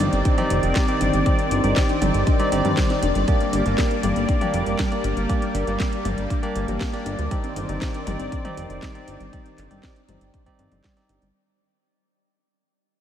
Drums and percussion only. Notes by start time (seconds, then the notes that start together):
0.00 closed hi-hat, high tom
0.13 closed hi-hat
0.25 kick, closed hi-hat
0.38 closed hi-hat, high tom
0.50 closed hi-hat
0.63 closed hi-hat
0.76 kick, snare, clap, closed hi-hat
0.88 closed hi-hat
1.01 closed hi-hat
1.13 closed hi-hat
1.26 kick, closed hi-hat
1.39 closed hi-hat
1.51 closed hi-hat
1.64 closed hi-hat
1.76 kick, snare, clap, closed hi-hat
1.89 closed hi-hat
2.02 closed hi-hat, high tom
2.14 closed hi-hat
2.27 kick, closed hi-hat
2.40 closed hi-hat
2.52 closed hi-hat
2.65 closed hi-hat, high tom
2.77 kick, snare, clap, closed hi-hat
2.90 snare, closed hi-hat
3.03 closed hi-hat
3.15 closed hi-hat
3.28 kick, closed hi-hat
3.40 closed hi-hat
3.53 closed hi-hat
3.66 closed hi-hat
3.78 kick, snare, clap, closed hi-hat
3.91 closed hi-hat
4.03 closed hi-hat, high tom
4.16 closed hi-hat
4.29 kick, closed hi-hat
4.41 closed hi-hat, high tom
4.54 closed hi-hat
4.66 closed hi-hat
4.79 kick, snare, clap, closed hi-hat
4.92 closed hi-hat
5.04 closed hi-hat
5.17 closed hi-hat
5.29 kick, closed hi-hat
5.42 closed hi-hat
5.55 closed hi-hat
5.67 closed hi-hat
5.80 kick, snare, clap, closed hi-hat
5.93 closed hi-hat
6.05 closed hi-hat, high tom
6.18 closed hi-hat
6.30 kick, closed hi-hat
6.43 closed hi-hat
6.56 closed hi-hat
6.68 closed hi-hat, high tom
6.81 kick, snare, clap, closed hi-hat
6.93 snare, closed hi-hat
7.06 closed hi-hat
7.19 closed hi-hat
7.31 kick, closed hi-hat
7.44 closed hi-hat
7.56 closed hi-hat
7.69 closed hi-hat
7.82 kick, snare, clap, closed hi-hat
7.94 closed hi-hat
8.07 closed hi-hat, high tom
8.20 closed hi-hat
8.32 kick, closed hi-hat
8.45 closed hi-hat, high tom
8.57 closed hi-hat
8.70 closed hi-hat
8.82 kick, snare, clap, closed hi-hat
8.95 closed hi-hat
9.08 closed hi-hat
9.20 closed hi-hat
9.33 kick, closed hi-hat
9.46 closed hi-hat
9.58 clap, closed hi-hat
9.71 closed hi-hat
9.83 kick, snare, clap, closed hi-hat
9.96 closed hi-hat
10.09 closed hi-hat, high tom
10.21 closed hi-hat
10.34 kick, closed hi-hat
10.46 kick, closed hi-hat
10.59 closed hi-hat, high tom
10.72 closed hi-hat, high tom
10.84 kick, snare, clap, closed hi-hat
10.97 snare, closed hi-hat
11.09 closed hi-hat
11.22 closed hi-hat